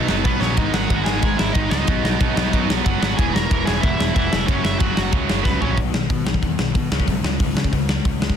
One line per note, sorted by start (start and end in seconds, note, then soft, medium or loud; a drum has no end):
0.00 0.21 D#4 medium
0.00 0.21 D#5 medium
0.08 0.22 F#1 medium
0.08 0.24 B2 medium
0.08 0.25 F#3 medium
0.08 0.25 B3 medium
0.08 0.25 D#4 loud
0.08 snare loud
0.24 0.39 B1 medium
0.24 0.42 B2 medium
0.24 0.41 F#3 medium
0.24 0.40 B3 medium
0.24 0.41 B3 medium
0.24 0.40 D#4 medium
0.24 0.40 B4 medium
0.24 kick loud
0.24 crash medium
0.40 0.54 A#1 medium
0.40 0.57 B2 medium
0.40 0.57 F#3 medium
0.40 0.57 B3 loud
0.40 0.56 C#4 medium
0.40 0.56 D#4 loud
0.40 0.57 C#5 medium
0.40 snare medium
0.57 0.69 G#1 loud
0.57 0.89 G#2 loud
0.57 0.91 D#3 loud
0.57 0.91 G#3 loud
0.57 0.92 B3 loud
0.57 0.73 D#4 medium
0.57 0.92 D#4 loud
0.57 0.74 D#5 medium
0.57 kick loud
0.57 ride medium
0.73 0.85 G#1 loud
0.73 1.04 F#4 medium
0.73 1.04 F#5 medium
0.73 snare loud
0.90 1.02 G#1 loud
0.90 1.07 G#2 medium
0.90 1.07 D#3 medium
0.90 1.06 G#3 medium
0.90 1.07 B3 medium
0.90 1.06 D#4 medium
0.90 kick loud
0.90 ride medium
1.04 1.18 G#1 loud
1.04 1.22 D#3 medium
1.04 1.22 G#3 medium
1.04 1.23 B3 medium
1.04 1.23 D#4 medium
1.04 1.20 G#4 medium
1.04 1.18 G#5 medium
1.04 snare loud
1.08 1.21 G#2 medium
1.20 1.35 G#1 medium
1.20 1.54 G#2 medium
1.20 1.54 D#3 medium
1.20 1.54 G#3 medium
1.20 1.37 G#4 medium
1.20 1.38 G#5 loud
1.20 kick loud
1.20 ride medium
1.24 1.56 B3 loud
1.24 1.55 D#4 loud
1.37 1.51 G#1 medium
1.37 1.54 E4 medium
1.37 1.53 E5 medium
1.37 snare loud
1.53 1.67 G#1 medium
1.53 1.72 G#2 medium
1.53 1.71 D#3 medium
1.53 1.71 G#3 medium
1.53 1.71 B3 medium
1.53 1.70 D#4 medium
1.53 1.69 D#5 medium
1.53 kick loud
1.53 ride medium
1.70 1.83 C#2 medium
1.70 1.86 G#2 medium
1.70 1.86 D#3 medium
1.70 1.87 G#3 medium
1.70 1.88 B3 medium
1.70 1.87 D#4 loud
1.70 2.66 D#4 medium
1.70 2.64 D#5 loud
1.70 snare loud
1.87 2.00 B1 loud
1.87 2.18 B2 medium
1.87 2.18 D#3 loud
1.87 2.19 F#3 loud
1.87 2.20 B3 loud
1.87 2.20 D#4 loud
1.87 kick loud
1.87 ride medium
2.04 2.16 B1 loud
2.04 snare loud
2.19 2.32 B1 loud
2.19 2.36 B2 medium
2.19 2.35 D#3 medium
2.19 2.35 F#3 medium
2.19 2.35 B3 medium
2.19 2.34 D#4 loud
2.19 kick loud
2.19 ride medium
2.36 2.48 B1 medium
2.36 2.50 B2 medium
2.36 2.50 D#3 medium
2.36 2.51 F#3 medium
2.36 2.51 B3 medium
2.36 2.52 D#4 medium
2.36 snare loud
2.52 2.65 F#2 medium
2.52 2.83 B2 medium
2.52 2.84 D#3 medium
2.52 2.84 F#3 medium
2.52 2.84 B3 loud
2.52 2.85 D#4 loud
2.52 kick loud
2.52 ride medium
2.69 2.80 B1 medium
2.69 snare loud
2.84 2.97 F#1 medium
2.84 3.00 B2 medium
2.84 3.00 D#3 medium
2.84 3.00 F#3 medium
2.84 3.00 B3 medium
2.84 2.99 D#4 medium
2.84 3.01 F#4 medium
2.84 2.99 F#5 loud
2.84 kick loud
2.84 ride medium
3.00 3.13 G#1 medium
3.00 3.17 B2 medium
3.00 3.16 D#3 medium
3.00 3.17 F#3 medium
3.00 3.16 B3 loud
3.00 3.16 D#4 loud
3.00 3.18 F#4 medium
3.00 3.18 F#5 loud
3.00 snare loud
3.16 3.30 E1 loud
3.16 3.50 E2 loud
3.16 3.51 B2 loud
3.16 3.48 E3 medium
3.16 3.49 G#3 loud
3.16 3.49 B3 loud
3.16 3.50 E4 loud
3.16 3.33 G#4 medium
3.16 3.33 G#5 loud
3.16 kick loud
3.16 ride medium
3.33 3.46 E1 loud
3.33 3.65 A#4 medium
3.33 3.65 A#5 loud
3.33 snare loud
3.49 3.62 E1 loud
3.49 3.67 E2 medium
3.49 3.67 B2 medium
3.49 3.66 E3 medium
3.49 3.66 G#3 medium
3.49 3.66 B3 medium
3.49 3.65 E4 loud
3.49 kick loud
3.49 ride medium
3.65 3.79 E1 loud
3.65 3.82 E2 medium
3.65 3.83 B2 medium
3.65 3.81 E3 medium
3.65 3.81 G#3 medium
3.65 3.82 B3 medium
3.65 3.82 E4 loud
3.65 3.83 G#4 medium
3.65 3.83 G#5 loud
3.65 snare loud
3.81 3.95 E1 medium
3.81 4.14 E2 medium
3.81 4.15 B2 loud
3.81 4.15 E3 loud
3.81 4.15 G#3 medium
3.81 4.16 B3 medium
3.81 4.15 E4 loud
3.81 4.13 E4 medium
3.81 4.14 E5 loud
3.81 kick loud
3.81 ride medium
3.99 4.11 E1 medium
3.99 snare loud
4.15 4.27 E1 medium
4.15 4.32 E2 loud
4.15 4.31 B2 loud
4.15 4.32 E3 medium
4.15 4.32 G#3 medium
4.15 4.31 B3 medium
4.15 4.31 E4 medium
4.15 4.46 E4 medium
4.15 4.48 E5 medium
4.15 kick loud
4.15 ride medium
4.32 4.44 F1 loud
4.32 4.46 E2 medium
4.32 4.47 B2 medium
4.32 4.48 E3 medium
4.32 4.47 G#3 medium
4.32 4.47 B3 medium
4.32 4.47 E4 loud
4.32 snare loud
4.46 4.60 F#1 loud
4.46 4.79 F#2 medium
4.46 4.79 C#3 loud
4.46 4.79 F#3 loud
4.46 4.79 A#3 loud
4.46 4.63 C#4 medium
4.46 4.80 C#4 loud
4.46 4.64 C#5 loud
4.46 kick loud
4.46 ride medium
4.63 4.76 F#1 medium
4.63 4.79 E4 medium
4.63 4.78 E5 medium
4.63 snare loud
4.78 4.92 F#1 loud
4.78 4.96 F#2 medium
4.78 4.96 C#3 medium
4.78 4.96 F#3 medium
4.78 4.95 A#3 medium
4.78 4.95 C#4 medium
4.78 5.10 F#4 medium
4.78 5.11 F#5 loud
4.78 kick loud
4.78 ride medium
4.96 5.09 F#1 loud
4.96 5.11 F#2 medium
4.96 5.11 C#3 medium
4.96 5.11 F#3 medium
4.96 5.12 A#3 medium
4.96 5.12 C#4 medium
4.96 snare loud
5.12 5.24 C#2 medium
5.12 5.43 F#2 medium
5.12 5.43 C#3 medium
5.12 5.43 F#3 medium
5.12 5.44 A#3 medium
5.12 5.44 C#4 loud
5.12 kick loud
5.12 ride medium
5.29 5.41 F#1 medium
5.29 snare loud
5.44 5.57 C#2 medium
5.44 5.60 F#2 medium
5.44 5.60 C#3 medium
5.44 5.59 F#3 medium
5.44 5.59 A#3 medium
5.44 5.60 B3 medium
5.44 5.58 C#4 medium
5.44 5.61 B4 medium
5.44 kick loud
5.44 snare medium
5.60 5.73 A#1 medium
5.60 5.76 F#2 medium
5.60 5.76 C#3 medium
5.60 5.76 F#3 medium
5.60 5.76 A#3 medium
5.60 5.76 C#4 medium
5.60 5.77 C#4 medium
5.60 5.76 C#5 loud
5.60 floor tom medium
5.76 5.91 B1 loud
5.76 5.92 B2 medium
5.76 5.92 D#3 medium
5.76 5.93 F#3 loud
5.76 kick loud
5.76 open hi-hat medium
5.94 6.07 B1 medium
5.94 6.08 B2 medium
5.94 6.08 D#3 medium
5.94 snare loud
6.10 6.24 B2 medium
6.10 6.23 B2 medium
6.10 6.25 D#3 medium
6.10 kick loud
6.10 open hi-hat medium
6.24 6.38 B1 medium
6.24 6.40 B2 medium
6.24 6.41 D#3 medium
6.24 snare loud
6.34 kick medium
6.42 6.56 E2 medium
6.42 6.57 B2 medium
6.42 6.57 D#3 medium
6.42 kick loud
6.42 open hi-hat medium
6.58 6.71 B1 medium
6.58 6.73 B2 medium
6.58 6.73 D#3 medium
6.58 snare loud
6.75 6.88 B2 medium
6.75 6.90 B2 medium
6.75 6.90 D#3 medium
6.75 kick loud
6.75 open hi-hat medium
6.91 7.04 C#2 medium
6.91 7.07 C#3 loud
6.91 7.07 G#3 loud
6.91 7.07 C#4 loud
6.91 snare loud
7.00 kick medium
7.08 7.21 B1 medium
7.08 7.23 C#3 medium
7.08 7.23 G#3 medium
7.08 kick loud
7.08 open hi-hat medium
7.23 7.36 C#2 medium
7.23 7.39 C#3 medium
7.23 7.39 G#3 medium
7.23 snare loud
7.40 7.53 C#2 loud
7.40 7.55 C#3 medium
7.40 7.55 G#3 medium
7.40 kick loud
7.40 open hi-hat medium
7.55 7.68 C#3 medium
7.55 7.71 C#3 medium
7.55 7.71 G#3 medium
7.55 snare loud
7.64 kick medium
7.72 7.99 C#2 medium
7.72 7.87 C#3 medium
7.72 7.87 G#3 medium
7.72 kick medium
7.72 open hi-hat medium
7.89 8.04 C#3 medium
7.89 8.03 G#3 medium
7.89 snare loud
8.05 8.18 C#2 medium
8.05 8.19 C#3 medium
8.05 8.20 G#3 medium
8.05 kick loud
8.05 open hi-hat medium
8.20 8.34 C#2 medium
8.20 8.35 C#3 medium
8.20 8.36 G#3 medium
8.20 snare loud
8.30 kick medium